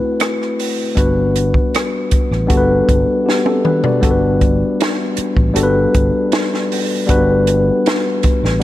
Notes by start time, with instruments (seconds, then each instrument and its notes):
Already playing: tine electric piano A3 C4 E4 F#4 B4
0.20 cross-stick, closed hi-hat
0.42 cross-stick
0.60 open hi-hat
0.95 fingered electric bass G1, tine electric piano G3 B3 D4 F#4 B4, kick, closed hi-hat
1.36 closed hi-hat
1.54 kick
1.75 cross-stick, closed hi-hat
2.11 muted fingered electric bass stroke, kick, closed hi-hat
2.31 fingered electric bass A1, cross-stick
2.47 fingered electric bass G1, tine electric piano G3 B3 D4 F#4 A4, kick, closed hi-hat
2.57 tine electric piano B4
2.89 fingered electric bass G1, kick, closed hi-hat
3.26 tine electric piano B3 G4, snare
3.46 tine electric piano A4, high tom
3.65 tine electric piano D4 B4, mid tom
3.84 tine electric piano F#4 D5, floor tom
4.01 fingered electric bass G1, tine electric piano G3 B3 D4 F#4 A4, kick, closed hi-hat
4.11 tine electric piano B4
4.41 kick, closed hi-hat
4.80 snare, closed hi-hat
5.17 muted fingered electric bass stroke, closed hi-hat
5.37 fingered electric bass A1, kick
5.54 fingered electric bass G1, tine electric piano G3 B3 D4 F#4 A4, closed hi-hat
5.63 tine electric piano B4
5.95 fingered electric bass G1, kick, closed hi-hat
6.32 snare, closed hi-hat
6.54 snare
6.72 open hi-hat
7.07 fingered electric bass G1, tine electric piano G3 B3 D4 F#4 B4, kick, closed hi-hat
7.47 closed hi-hat
7.86 snare, closed hi-hat
8.23 muted fingered electric bass stroke, kick, closed hi-hat
8.43 fingered electric bass A1, snare
8.60 tine electric piano G3